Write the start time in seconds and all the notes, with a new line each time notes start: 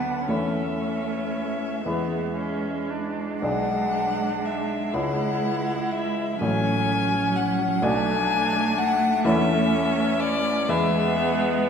Already playing: D2 F#3 B3 D4 F#4 B4 F#5
0.27 E2 A3 C#4 E4 C#5 E5
1.84 E2 G#3 B3 E4 B4
2.36 C#4
2.90 D4
3.41 B1 G#3 D4 D5 F#5
4.45 E5
4.93 C#2 G#3 E4 C#5 F#5
5.92 E5
6.41 A1 F#3 A3 C#4 F#4 C#5 G#5
7.37 F#5
7.82 B1 A3 D4 F#4 D5 G#5
8.78 F#5
9.25 E2 A3 C#4 E4 C#5 E5
10.20 D5
10.69 E2 G#3 B3 E4 B4 E5